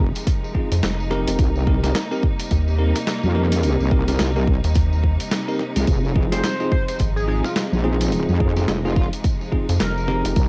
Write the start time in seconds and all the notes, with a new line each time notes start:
Already playing: F1 C3 F3 G#3 D#4
0.15 closed hi-hat, tambourine
0.27 kick, closed hi-hat, tambourine
0.44 tambourine
0.54 C4 D#4 F4 G#4, kick
0.72 F2, closed hi-hat, tambourine
0.83 F1, snare, closed hi-hat, tambourine
1.00 tambourine
1.11 C4 D#4 G4 A#4, snare
1.27 F1, closed hi-hat, tambourine
1.39 C2 C3 G3 A#3, kick, closed hi-hat, tambourine
1.56 tambourine
1.67 C4 D#4 G4 A#4, kick
1.83 C4 D#4 G4 A#4, snare, closed hi-hat, tambourine
1.95 snare, closed hi-hat, tambourine
2.11 C4 D#4 G4 A#4, tambourine
2.23 kick
2.39 closed hi-hat, tambourine
2.51 D#2, kick, closed hi-hat, tambourine
2.68 tambourine
2.79 C4 D#4 G4 A#4
2.95 snare, closed hi-hat, tambourine
3.07 snare, closed hi-hat, tambourine
3.23 F2, tambourine
3.35 C4 D#4 G4 A#4
3.52 closed hi-hat, tambourine
3.63 closed hi-hat, tambourine
3.80 C2, tambourine
3.91 C4 D#4 G4 A#4, kick
4.08 C4 D#4 G4 A#4, snare, closed hi-hat, tambourine
4.19 C2, snare, closed hi-hat, tambourine
4.36 C4 D#4 G4 A#4, tambourine
4.47 kick
4.64 D#2, closed hi-hat, tambourine
4.74 kick, closed hi-hat, tambourine
4.93 tambourine
5.04 kick
5.20 closed hi-hat, tambourine
5.31 snare, closed hi-hat, tambourine
5.48 C4 D#4 G4 A#4, tambourine
5.59 snare
5.76 C2 C4 D#4 F4 G#4, closed hi-hat, tambourine
5.87 F1 F3 G#3, kick, closed hi-hat, tambourine
6.05 tambourine
6.16 C4 D#4 F4 G#4, kick
6.32 C4 D#4 F4 G#4 C5, snare, closed hi-hat, tambourine
6.44 snare, closed hi-hat, tambourine
6.60 C4 D#4 F4 G#4, tambourine
6.72 C5, kick
6.88 C5, closed hi-hat, tambourine
6.99 G#1, kick, closed hi-hat, tambourine
7.16 G#4, tambourine
7.28 C4 D#4 F4 G#4
7.44 F4, snare, tambourine
7.56 snare, closed hi-hat, tambourine
7.73 A#1, tambourine
7.84 C4 D#4 F4 G#4
8.01 closed hi-hat, tambourine
8.12 closed hi-hat, tambourine
8.29 F2, tambourine
8.40 C4 D#4 F4 G#4, kick
8.56 C4 D#4 F4 G#4, snare, tambourine
8.68 F1, snare, closed hi-hat, tambourine
8.85 C4 D#4 F4 G#4, tambourine
8.96 F4, kick
9.13 closed hi-hat, tambourine
9.24 kick, closed hi-hat, tambourine
9.41 tambourine
9.52 C4 D#4 F4 G#4, kick
9.69 F2, closed hi-hat, tambourine
9.80 F1 A#4, snare, closed hi-hat, tambourine
9.98 tambourine
10.08 C4 D#4 G4 A#4, snare
10.25 F1, closed hi-hat, tambourine
10.36 C2 G3 A#3 D#4, kick, closed hi-hat, tambourine